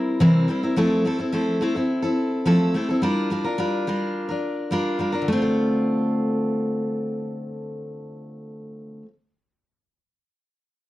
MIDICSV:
0, 0, Header, 1, 2, 480
1, 0, Start_track
1, 0, Key_signature, -1, "minor"
1, 0, Tempo, 567108
1, 643, Time_signature, 4, 2, 24, 8
1, 9224, End_track
2, 0, Start_track
2, 0, Title_t, "Steel-string acoustic guitar"
2, 0, Program_c, 0, 25
2, 0, Note_on_c, 0, 55, 39
2, 0, Note_on_c, 0, 60, 41
2, 0, Note_on_c, 0, 64, 52
2, 0, Note_on_c, 0, 70, 52
2, 164, Note_off_c, 0, 55, 0
2, 164, Note_off_c, 0, 70, 0
2, 168, Note_off_c, 0, 64, 0
2, 171, Note_off_c, 0, 60, 0
2, 171, Note_on_c, 0, 48, 68
2, 171, Note_on_c, 0, 52, 78
2, 174, Note_on_c, 0, 55, 70
2, 179, Note_on_c, 0, 60, 82
2, 180, Note_on_c, 0, 70, 84
2, 182, Note_on_c, 0, 64, 76
2, 396, Note_off_c, 0, 55, 0
2, 405, Note_off_c, 0, 60, 0
2, 406, Note_on_c, 0, 55, 58
2, 407, Note_off_c, 0, 48, 0
2, 407, Note_off_c, 0, 52, 0
2, 412, Note_off_c, 0, 70, 0
2, 413, Note_off_c, 0, 64, 0
2, 415, Note_on_c, 0, 60, 52
2, 422, Note_on_c, 0, 64, 59
2, 427, Note_on_c, 0, 70, 60
2, 523, Note_off_c, 0, 70, 0
2, 524, Note_off_c, 0, 55, 0
2, 525, Note_off_c, 0, 64, 0
2, 529, Note_off_c, 0, 60, 0
2, 533, Note_on_c, 0, 70, 48
2, 535, Note_on_c, 0, 64, 46
2, 543, Note_on_c, 0, 60, 39
2, 545, Note_on_c, 0, 55, 36
2, 646, Note_off_c, 0, 60, 0
2, 646, Note_off_c, 0, 64, 0
2, 647, Note_on_c, 0, 53, 73
2, 648, Note_off_c, 0, 70, 0
2, 649, Note_off_c, 0, 55, 0
2, 653, Note_on_c, 0, 57, 79
2, 656, Note_on_c, 0, 60, 68
2, 656, Note_on_c, 0, 64, 77
2, 661, Note_on_c, 0, 69, 82
2, 879, Note_off_c, 0, 57, 0
2, 884, Note_off_c, 0, 60, 0
2, 885, Note_off_c, 0, 53, 0
2, 889, Note_off_c, 0, 64, 0
2, 889, Note_on_c, 0, 57, 50
2, 892, Note_off_c, 0, 69, 0
2, 894, Note_on_c, 0, 60, 59
2, 902, Note_on_c, 0, 64, 57
2, 907, Note_on_c, 0, 69, 66
2, 993, Note_off_c, 0, 69, 0
2, 1002, Note_off_c, 0, 64, 0
2, 1003, Note_on_c, 0, 69, 52
2, 1006, Note_off_c, 0, 57, 0
2, 1008, Note_off_c, 0, 60, 0
2, 1013, Note_on_c, 0, 64, 43
2, 1021, Note_on_c, 0, 60, 35
2, 1118, Note_off_c, 0, 64, 0
2, 1120, Note_off_c, 0, 60, 0
2, 1121, Note_on_c, 0, 53, 60
2, 1123, Note_off_c, 0, 69, 0
2, 1125, Note_on_c, 0, 57, 60
2, 1128, Note_on_c, 0, 64, 64
2, 1131, Note_on_c, 0, 60, 59
2, 1135, Note_on_c, 0, 69, 76
2, 1351, Note_off_c, 0, 57, 0
2, 1360, Note_off_c, 0, 60, 0
2, 1361, Note_off_c, 0, 53, 0
2, 1361, Note_on_c, 0, 57, 55
2, 1365, Note_off_c, 0, 64, 0
2, 1369, Note_off_c, 0, 69, 0
2, 1370, Note_on_c, 0, 60, 57
2, 1375, Note_on_c, 0, 64, 68
2, 1383, Note_on_c, 0, 69, 62
2, 1469, Note_off_c, 0, 69, 0
2, 1479, Note_off_c, 0, 64, 0
2, 1479, Note_on_c, 0, 69, 38
2, 1481, Note_off_c, 0, 57, 0
2, 1486, Note_off_c, 0, 60, 0
2, 1489, Note_on_c, 0, 64, 39
2, 1498, Note_on_c, 0, 60, 36
2, 1703, Note_off_c, 0, 69, 0
2, 1713, Note_on_c, 0, 69, 54
2, 1714, Note_off_c, 0, 64, 0
2, 1724, Note_off_c, 0, 60, 0
2, 1724, Note_on_c, 0, 64, 44
2, 1734, Note_on_c, 0, 60, 41
2, 2075, Note_off_c, 0, 60, 0
2, 2077, Note_off_c, 0, 69, 0
2, 2078, Note_off_c, 0, 64, 0
2, 2078, Note_on_c, 0, 53, 68
2, 2082, Note_on_c, 0, 57, 72
2, 2086, Note_on_c, 0, 60, 76
2, 2088, Note_on_c, 0, 64, 68
2, 2091, Note_on_c, 0, 69, 82
2, 2312, Note_off_c, 0, 57, 0
2, 2317, Note_off_c, 0, 60, 0
2, 2320, Note_off_c, 0, 53, 0
2, 2322, Note_on_c, 0, 57, 52
2, 2325, Note_off_c, 0, 64, 0
2, 2326, Note_off_c, 0, 69, 0
2, 2327, Note_on_c, 0, 60, 50
2, 2334, Note_on_c, 0, 64, 62
2, 2338, Note_on_c, 0, 69, 57
2, 2434, Note_off_c, 0, 69, 0
2, 2442, Note_off_c, 0, 57, 0
2, 2444, Note_off_c, 0, 60, 0
2, 2444, Note_on_c, 0, 69, 43
2, 2448, Note_off_c, 0, 64, 0
2, 2457, Note_on_c, 0, 64, 42
2, 2463, Note_on_c, 0, 60, 33
2, 2554, Note_on_c, 0, 55, 65
2, 2560, Note_off_c, 0, 60, 0
2, 2562, Note_off_c, 0, 64, 0
2, 2563, Note_off_c, 0, 69, 0
2, 2563, Note_on_c, 0, 62, 74
2, 2566, Note_on_c, 0, 65, 77
2, 2568, Note_on_c, 0, 70, 77
2, 2785, Note_off_c, 0, 55, 0
2, 2794, Note_off_c, 0, 62, 0
2, 2795, Note_on_c, 0, 55, 49
2, 2800, Note_off_c, 0, 65, 0
2, 2802, Note_off_c, 0, 70, 0
2, 2804, Note_on_c, 0, 62, 59
2, 2810, Note_on_c, 0, 65, 59
2, 2812, Note_on_c, 0, 70, 54
2, 2905, Note_off_c, 0, 70, 0
2, 2912, Note_off_c, 0, 65, 0
2, 2915, Note_on_c, 0, 70, 46
2, 2918, Note_off_c, 0, 55, 0
2, 2918, Note_off_c, 0, 62, 0
2, 2923, Note_on_c, 0, 65, 39
2, 2929, Note_on_c, 0, 62, 37
2, 3025, Note_off_c, 0, 62, 0
2, 3031, Note_on_c, 0, 55, 72
2, 3033, Note_off_c, 0, 65, 0
2, 3034, Note_off_c, 0, 70, 0
2, 3035, Note_on_c, 0, 62, 61
2, 3043, Note_on_c, 0, 65, 66
2, 3044, Note_on_c, 0, 70, 60
2, 3267, Note_off_c, 0, 55, 0
2, 3274, Note_off_c, 0, 62, 0
2, 3277, Note_on_c, 0, 55, 57
2, 3279, Note_off_c, 0, 65, 0
2, 3282, Note_off_c, 0, 70, 0
2, 3284, Note_on_c, 0, 62, 54
2, 3290, Note_on_c, 0, 65, 63
2, 3291, Note_on_c, 0, 70, 65
2, 3618, Note_off_c, 0, 70, 0
2, 3628, Note_on_c, 0, 70, 45
2, 3631, Note_off_c, 0, 65, 0
2, 3636, Note_off_c, 0, 62, 0
2, 3639, Note_off_c, 0, 55, 0
2, 3642, Note_on_c, 0, 65, 37
2, 3646, Note_on_c, 0, 62, 35
2, 3983, Note_off_c, 0, 65, 0
2, 3984, Note_off_c, 0, 62, 0
2, 3984, Note_on_c, 0, 55, 62
2, 3992, Note_off_c, 0, 70, 0
2, 3994, Note_on_c, 0, 62, 66
2, 3994, Note_on_c, 0, 65, 78
2, 4002, Note_on_c, 0, 70, 80
2, 4210, Note_off_c, 0, 55, 0
2, 4217, Note_off_c, 0, 62, 0
2, 4220, Note_on_c, 0, 55, 50
2, 4225, Note_off_c, 0, 65, 0
2, 4226, Note_off_c, 0, 70, 0
2, 4227, Note_on_c, 0, 62, 48
2, 4236, Note_on_c, 0, 65, 54
2, 4236, Note_on_c, 0, 70, 50
2, 4326, Note_off_c, 0, 70, 0
2, 4337, Note_on_c, 0, 70, 49
2, 4338, Note_off_c, 0, 65, 0
2, 4343, Note_off_c, 0, 62, 0
2, 4348, Note_on_c, 0, 65, 41
2, 4350, Note_off_c, 0, 55, 0
2, 4354, Note_on_c, 0, 62, 41
2, 4415, Note_on_c, 0, 50, 64
2, 4468, Note_off_c, 0, 70, 0
2, 4469, Note_on_c, 0, 57, 75
2, 4474, Note_off_c, 0, 65, 0
2, 4477, Note_off_c, 0, 62, 0
2, 4507, Note_on_c, 0, 60, 70
2, 4548, Note_on_c, 0, 65, 59
2, 4587, Note_on_c, 0, 69, 61
2, 7637, Note_off_c, 0, 50, 0
2, 7664, Note_off_c, 0, 57, 0
2, 7683, Note_off_c, 0, 60, 0
2, 7703, Note_off_c, 0, 65, 0
2, 7723, Note_off_c, 0, 69, 0
2, 9224, End_track
0, 0, End_of_file